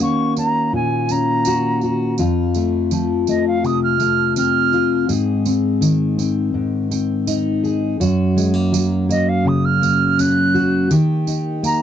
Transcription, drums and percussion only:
0.00 tambourine
0.37 tambourine
1.09 tambourine
1.45 tambourine
1.81 tambourine
2.18 tambourine
2.54 tambourine
2.91 tambourine
3.27 tambourine
3.64 tambourine
4.00 tambourine
4.36 tambourine
4.73 tambourine
5.09 tambourine
5.45 tambourine
5.82 tambourine
6.19 tambourine
6.91 tambourine
7.27 tambourine
7.65 tambourine
8.01 tambourine
8.38 tambourine
8.74 tambourine
9.11 tambourine
9.83 tambourine
10.19 tambourine
10.55 tambourine
10.91 tambourine
11.27 tambourine
11.64 tambourine

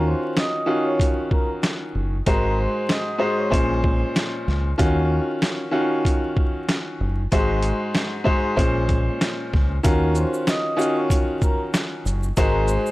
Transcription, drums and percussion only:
0.37 snare, closed hi-hat
1.00 kick, closed hi-hat
1.31 kick
1.63 snare, closed hi-hat
2.26 kick, closed hi-hat
2.89 snare, closed hi-hat
3.52 kick, closed hi-hat
3.84 kick
4.16 snare, closed hi-hat
4.48 snare
4.79 kick, closed hi-hat
5.42 snare, closed hi-hat
6.05 kick, closed hi-hat
6.37 kick
6.69 snare, closed hi-hat
7.32 kick, closed hi-hat
7.62 closed hi-hat
7.95 snare, closed hi-hat
8.27 kick
8.57 kick, closed hi-hat
8.89 kick, closed hi-hat
9.21 snare, closed hi-hat
9.53 kick, snare
9.84 kick, closed hi-hat, shaker
10.15 shaker
10.34 shaker
10.47 snare, closed hi-hat, shaker
10.79 shaker
10.81 shaker
11.10 kick, closed hi-hat, shaker
11.42 kick, shaker
11.74 snare, closed hi-hat, shaker
12.06 shaker
12.23 shaker
12.37 kick, closed hi-hat, shaker
12.68 shaker
12.86 shaker

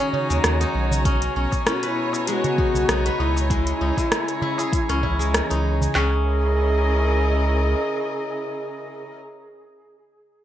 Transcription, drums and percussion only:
0.00 closed hi-hat, cabasa
0.13 darbuka ka, darbuka dum
0.30 cabasa
0.44 cross-stick, closed hi-hat, cabasa
0.61 closed hi-hat, cabasa
0.91 darbuka dum, cabasa
1.05 kick, closed hi-hat, cabasa
1.22 closed hi-hat, cabasa
1.52 kick, closed hi-hat, darbuka ka, darbuka tek, cabasa
1.67 cross-stick, closed hi-hat, cabasa
1.83 closed hi-hat, cabasa
2.13 darbuka tek, cabasa
2.27 closed hi-hat, cabasa
2.44 closed hi-hat, darbuka dum, cabasa
2.58 kick
2.74 darbuka dum, cabasa
2.89 cross-stick, closed hi-hat, cabasa
3.06 closed hi-hat, cabasa
3.20 darbuka ka
3.36 darbuka ka, cabasa
3.50 kick, closed hi-hat, cabasa
3.67 closed hi-hat, cabasa
3.97 kick, closed hi-hat, darbuka ka, darbuka tek, cabasa
4.12 cross-stick, closed hi-hat, cabasa
4.28 closed hi-hat, cabasa
4.41 darbuka tek, darbuka dum
4.58 closed hi-hat, darbuka tek, cabasa
4.73 kick, closed hi-hat, cabasa
4.89 cross-stick, closed hi-hat, darbuka ka, cabasa
5.03 kick, darbuka ka, darbuka dum
5.21 cabasa
5.34 cross-stick, closed hi-hat, cabasa
5.51 closed hi-hat, cabasa
5.81 darbuka dum, cabasa
5.95 snare, clap

